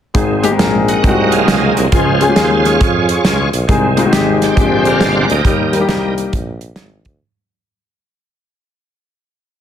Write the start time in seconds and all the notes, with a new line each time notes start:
0.14 G#1 G#2 D#3 G#3 C4 D#4 G#4, kick, closed hi-hat
0.43 G#3 C4 D#4 G4, closed hi-hat
0.51 G#3 C4 D#4 G#4
0.58 A#1 A#4, snare, closed hi-hat
0.88 D#5 F#5, closed hi-hat
1.02 C2 C3 F#3 G#3 A#3 C4 D#4 F4, kick, closed hi-hat
1.10 F#4
1.31 G#4 F5, closed hi-hat
1.47 C#2, snare, closed hi-hat
1.76 C2, closed hi-hat
1.92 C#2 C#3 F3 G#3 C#4 F4 G#4 C5, kick, closed hi-hat
2.20 G#3 C#4 F4 G#4, closed hi-hat
2.28 G#3 C#4 F4 G4
2.35 D#2 G#4, snare, closed hi-hat
2.65 F4 G#4 C#5, snare, closed hi-hat
2.81 F2, kick, closed hi-hat
3.09 closed hi-hat
3.25 C#2, snare, closed hi-hat
3.53 B1, closed hi-hat
3.68 C2 C3 D#3 G#3 C4 D#4 G#4, kick, closed hi-hat
3.97 G#3 C4 D#4 F4, closed hi-hat
4.05 G#3 C4 D#4 F#4
4.12 G#1 G4, snare, closed hi-hat
4.42 C5 D5 G5, snare, closed hi-hat
4.56 A#1 A#2 D3 G#3 C4 D4 G4, kick, closed hi-hat
4.85 A#4 D5 F5, closed hi-hat
5.01 G1, snare, closed hi-hat
5.21 F#5
5.30 D2 A#4 D#5 G5, closed hi-hat
5.44 D#2 D#3 G3 A#3 D#4 G4, kick, closed hi-hat
5.72 G3 A#3 D#4 A#4, closed hi-hat
5.80 G3 A#3 D#4 G4
5.89 C2, snare, closed hi-hat
6.18 closed hi-hat
6.33 A#1, kick, closed hi-hat
6.61 closed hi-hat
6.76 G#1, snare, closed hi-hat
7.05 D2, kick, closed hi-hat